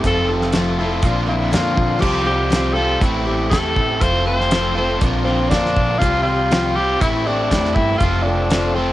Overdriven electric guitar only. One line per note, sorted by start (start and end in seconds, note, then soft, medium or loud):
0.04 0.79 F2 medium
0.04 0.79 C3 medium
0.04 0.52 F3 medium
0.04 0.54 A3 medium
0.04 0.55 C4 medium
0.04 0.56 F4 medium
0.53 0.81 F3 medium
0.53 0.80 A3 medium
0.53 0.80 C4 medium
0.53 0.78 F4 medium
0.79 1.04 F3 medium
0.79 1.04 A3 medium
0.79 1.06 C4 medium
0.79 1.02 F4 medium
1.04 1.53 A#2 loud
1.04 1.54 D3 loud
1.04 1.31 A#3 loud
1.04 1.29 D4 loud
1.04 1.27 F4 loud
1.28 1.56 D4 medium
1.28 1.57 F4 medium
1.32 1.55 A#3 medium
1.54 2.02 A#2 medium
1.54 2.03 D3 loud
1.54 2.03 A#3 medium
1.54 2.04 D4 medium
1.54 2.04 F4 loud
2.03 2.78 C3 medium
2.03 2.51 F3 medium
2.03 2.52 G3 medium
2.03 2.54 C4 medium
2.03 2.55 F4 medium
2.52 3.01 F3 medium
2.52 2.79 G3 medium
2.52 2.78 C4 medium
2.52 2.75 F4 medium
2.76 3.02 G3 medium
2.76 3.04 C4 medium
2.76 3.01 F4 medium
3.02 3.49 A2 medium
3.02 3.50 E3 medium
3.02 3.29 A3 loud
3.02 3.29 C4 loud
3.02 3.26 E4 loud
3.27 3.51 A3 medium
3.27 3.53 C4 medium
3.27 3.53 E4 medium
3.50 4.00 A2 loud
3.50 3.99 E3 medium
3.50 4.00 A3 loud
3.50 4.02 C4 loud
3.50 4.02 E4 loud
4.00 4.50 F3 medium
4.00 4.51 A3 medium
4.00 4.53 C4 medium
4.00 4.54 F4 medium
4.51 5.00 F3 medium
4.51 4.76 A3 medium
4.51 4.75 C4 medium
4.51 4.73 F4 medium
4.75 5.01 A3 medium
4.75 5.03 C4 medium
4.75 4.99 F4 medium
5.00 5.49 A#2 loud
5.00 5.51 D3 medium
5.00 5.27 A#3 loud
5.00 5.26 D4 loud
5.00 5.23 F4 loud
5.25 5.51 A#3 medium
5.25 5.53 D4 medium
5.25 5.54 F4 medium
5.51 6.00 A#2 medium
5.51 6.00 D3 medium
5.51 6.01 A#3 loud
5.51 6.02 D4 loud
5.55 6.02 F4 loud
6.00 6.76 C3 medium
6.00 6.50 F3 medium
6.00 6.51 G3 medium
6.00 6.53 C4 medium
6.00 6.53 F4 medium
6.51 7.00 F3 medium
6.51 6.78 G3 medium
6.51 6.77 C4 medium
6.51 6.74 F4 medium
6.76 7.01 G3 medium
6.76 7.03 C4 medium
6.76 7.00 F4 medium
7.01 7.50 A2 medium
7.01 7.51 E3 medium
7.01 7.29 A3 loud
7.01 7.28 C4 loud
7.01 7.26 E4 medium
7.27 7.52 A3 medium
7.27 7.54 C4 medium
7.27 7.53 E4 medium
7.51 8.00 A2 medium
7.51 8.00 E3 loud
7.51 8.01 A3 medium
7.51 8.03 C4 loud
7.51 8.01 E4 loud
8.01 8.76 F2 medium
8.01 8.76 C3 medium
8.01 8.49 F3 medium
8.01 8.51 A3 medium
8.01 8.52 C4 medium
8.01 8.53 F4 medium
8.50 8.78 F3 medium
8.50 8.76 A3 medium
8.50 8.76 C4 medium
8.54 8.74 F4 medium
8.76 8.93 F3 medium
8.76 8.93 A3 medium
8.76 8.93 C4 medium
8.76 8.93 F4 medium